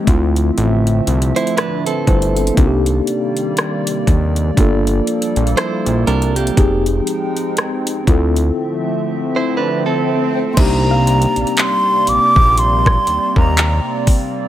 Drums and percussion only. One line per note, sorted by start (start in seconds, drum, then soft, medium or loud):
0.07 kick loud
0.07 closed hi-hat medium
0.36 closed hi-hat medium
0.58 closed hi-hat medium
0.87 closed hi-hat soft
1.07 closed hi-hat medium
1.22 closed hi-hat medium
1.36 closed hi-hat soft
1.47 closed hi-hat soft
1.58 cross-stick loud
1.58 closed hi-hat medium
1.87 closed hi-hat medium
2.07 kick medium
2.07 closed hi-hat soft
2.22 closed hi-hat medium
2.37 closed hi-hat medium
2.47 closed hi-hat medium
2.57 kick loud
2.57 closed hi-hat medium
2.86 closed hi-hat soft
3.07 closed hi-hat medium
3.37 closed hi-hat soft
3.57 cross-stick loud
3.57 closed hi-hat medium
3.87 closed hi-hat medium
4.07 kick medium
4.07 closed hi-hat medium
4.36 closed hi-hat soft
4.57 kick medium
4.57 closed hi-hat medium
4.87 closed hi-hat soft
5.07 closed hi-hat medium
5.22 closed hi-hat medium
5.36 closed hi-hat soft
5.47 closed hi-hat soft
5.57 cross-stick loud
5.57 closed hi-hat medium
5.86 closed hi-hat medium
6.07 closed hi-hat soft
6.22 closed hi-hat medium
6.36 closed hi-hat medium
6.47 closed hi-hat medium
6.57 kick loud
6.57 closed hi-hat medium
6.86 closed hi-hat soft
7.07 closed hi-hat medium
7.37 closed hi-hat soft
7.57 cross-stick loud
7.57 closed hi-hat medium
7.87 closed hi-hat medium
8.07 kick loud
8.07 closed hi-hat medium
8.36 closed hi-hat medium
10.57 kick loud
10.57 closed hi-hat medium
10.57 crash medium
11.07 closed hi-hat medium
11.22 closed hi-hat soft
11.36 closed hi-hat soft
11.47 closed hi-hat soft
11.57 clap loud
11.57 closed hi-hat medium
12.07 closed hi-hat medium
12.36 kick medium
12.57 closed hi-hat medium
12.86 kick loud
12.86 cross-stick loud
13.07 closed hi-hat medium
13.36 kick medium
13.57 clap loud
13.57 closed hi-hat medium
14.07 kick medium
14.07 open hi-hat medium